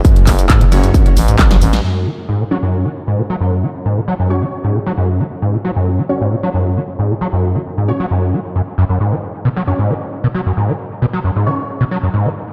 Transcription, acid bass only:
X:1
M:4/4
L:1/16
Q:1/4=134
K:F#m
V:1 name="Acid bass" clef=bass
F,,2 F, z G,, B,, F, F,,2 F, z G,, B,, F, F,, z | F,,2 F, z G,, B,, F, F,,2 F, z G,, B,, F, F,,2 | F, z G,, B,, F, F,,2 F, z G,, B,, F, F,,2 F, z | G,, B,, F, F,,2 F, z G,, B,, F, F,,2 F, z G,, B,, |
F, F,,2 F, z G,, B,, F, F,,2 A, z F,, z F,, F,, | G,, F, z2 B,, F, F,, G,, F, z2 B,, F, F,, G,, F, | z2 B,, F, F,, G,, F, z2 B,, F, F,, G,, F, z2 |]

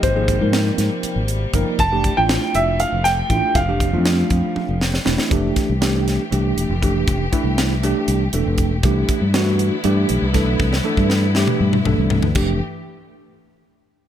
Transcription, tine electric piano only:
X:1
M:7/8
L:1/16
Q:1/4=119
K:F
V:1 name="Tine electric piano"
z [F,B,_E_A]2 [F,B,EB]6 z3 [F,B,EB]2 | z [E,A,DG]2 [A,DEF]6 z3 [A,DEF]2 | z [E,A,DG]2 [F,A,DF]6 z3 [E,A,DE]2 | [E,A,DG]3 z [E,A,DG]3 z [E,A,DG]3 z [E,A,DG]2- |
[E,A,DG] z [E,A,DE]3 z [E,A,DG]3 z [E,A,DA]3 z | [E,A,DG]3 z [E,A,D_G]3 z [E,A,D=G]3 z [E,A,DA]2- | [E,A,DA] z [E,A,DA]3 z [E,A,DG]3 z [E,A,DA]3 z | [E,A,DG]2 z12 |]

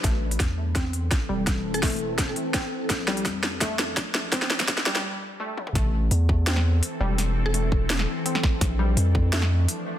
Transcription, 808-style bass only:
X:1
M:4/4
L:1/8
Q:1/4=168
K:Am
V:1 name="808-style bass" clef=bass
A,,,2 E,,4 z E,,,- | E,,,4- E,,, z3 | _B,,,2 F,,4 B,,,2- | _B,,,2 B,,,2 z4 |
A,,,2 E,,4 z E,,,- | E,,,4- E,,, z3 | _B,,,2 F,,4 z2 |]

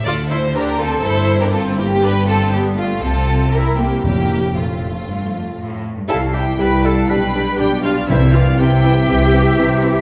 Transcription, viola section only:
X:1
M:4/4
L:1/16
Q:1/4=120
K:F
V:1 name="Viola section"
F2 E2 D2 C2 E3 D C2 B,2 | D2 C2 =B,2 A,2 C4 E2 _B,2 | B,4 A,8- A,2 z2 | [K:C] A2 G2 B2 A2 B4 G2 F2 |
E2 F2 G12 |]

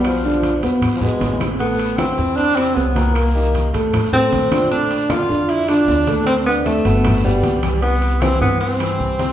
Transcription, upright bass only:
X:1
M:4/4
L:1/8
Q:1/4=154
K:C
V:1 name="Upright bass" clef=bass
B,,,3 E,,2 B,,, A,,,2- | A,,,3 E,,3 C,,2- | C,,3 F,,3 _B,,,2- | _B,,,3 F,,3 D,,2- |
D,,3 G,,,3 C,,2- | C,,3 G,,3 C,,2 |]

